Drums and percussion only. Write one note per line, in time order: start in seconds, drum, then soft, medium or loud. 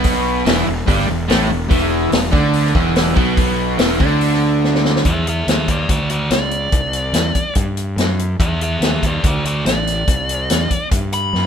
0.04 kick loud
0.04 open hi-hat medium
0.46 snare loud
0.46 open hi-hat medium
0.88 kick loud
0.88 open hi-hat medium
0.99 snare soft
1.29 snare loud
1.29 open hi-hat medium
1.71 kick loud
1.71 open hi-hat soft
2.12 snare loud
2.12 open hi-hat medium
2.33 kick loud
2.33 snare soft
2.53 open hi-hat medium
2.65 snare soft
2.75 kick medium
2.96 snare loud
2.96 open hi-hat medium
3.17 kick loud
3.37 kick medium
3.37 open hi-hat medium
3.79 snare loud
3.79 open hi-hat medium
4.00 kick loud
4.21 open hi-hat medium
4.34 snare soft
4.64 snare medium
4.75 snare medium
4.85 snare medium
4.96 snare medium
5.05 kick medium
5.05 closed hi-hat medium
5.27 closed hi-hat medium
5.48 snare loud
5.48 closed hi-hat medium
5.68 kick medium
5.68 closed hi-hat medium
5.89 kick medium
5.89 closed hi-hat medium
6.10 closed hi-hat medium
6.31 snare loud
6.31 closed hi-hat medium
6.51 closed hi-hat medium
6.72 kick loud
6.72 closed hi-hat medium
6.93 closed hi-hat medium
7.14 snare loud
7.14 closed hi-hat medium
7.35 kick medium
7.35 closed hi-hat medium
7.55 kick loud
7.55 closed hi-hat medium
7.77 closed hi-hat medium
7.98 snare medium
7.98 closed hi-hat medium
8.19 closed hi-hat medium
8.40 kick loud
8.40 closed hi-hat medium
8.61 closed hi-hat medium
8.82 snare loud
8.82 closed hi-hat medium
9.03 kick medium
9.03 closed hi-hat medium
9.24 kick loud
9.24 closed hi-hat medium
9.45 closed hi-hat medium
9.66 snare loud
9.66 closed hi-hat medium
9.87 snare soft
9.87 closed hi-hat medium
10.08 kick loud
10.08 closed hi-hat medium
10.29 closed hi-hat medium
10.50 snare loud
10.50 closed hi-hat medium
10.71 kick medium
10.71 closed hi-hat medium
10.91 kick loud
10.91 closed hi-hat medium
11.12 closed hi-hat medium
11.35 snare medium